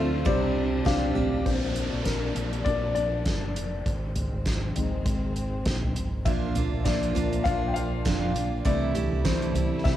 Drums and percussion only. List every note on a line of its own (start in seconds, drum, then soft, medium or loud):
0.13 ride soft
0.26 kick loud
0.26 ride medium
0.56 ride medium
0.86 kick loud
0.86 snare loud
0.86 ride medium
1.16 floor tom medium
1.16 ride medium
1.46 kick medium
1.46 closed hi-hat medium
1.76 closed hi-hat medium
2.05 kick medium
2.05 snare medium
2.05 closed hi-hat medium
2.36 closed hi-hat medium
2.53 closed hi-hat soft
2.66 kick loud
2.66 closed hi-hat medium
2.96 closed hi-hat medium
3.26 kick loud
3.26 snare loud
3.26 closed hi-hat medium
3.56 closed hi-hat medium
3.86 kick medium
3.86 closed hi-hat medium
4.15 closed hi-hat medium
4.15 floor tom medium
4.46 kick medium
4.46 snare medium
4.46 closed hi-hat medium
4.76 closed hi-hat medium
4.76 floor tom medium
5.06 kick loud
5.06 closed hi-hat medium
5.36 closed hi-hat medium
5.65 kick loud
5.65 snare loud
5.65 closed hi-hat medium
5.83 floor tom medium
5.96 closed hi-hat medium
6.26 kick loud
6.26 closed hi-hat medium
6.55 closed hi-hat medium
6.55 floor tom medium
6.86 kick medium
6.86 snare medium
6.86 closed hi-hat medium
7.03 closed hi-hat soft
7.16 closed hi-hat medium
7.16 floor tom medium
7.33 closed hi-hat soft
7.46 kick loud
7.46 closed hi-hat medium
7.76 closed hi-hat medium
8.05 kick loud
8.05 snare loud
8.05 closed hi-hat medium
8.36 closed hi-hat medium
8.66 kick loud
8.66 closed hi-hat medium
8.95 closed hi-hat medium
8.95 floor tom medium
9.25 kick medium
9.25 snare medium
9.25 closed hi-hat medium
9.42 closed hi-hat soft
9.55 closed hi-hat medium
9.55 floor tom medium
9.85 kick loud
9.85 snare medium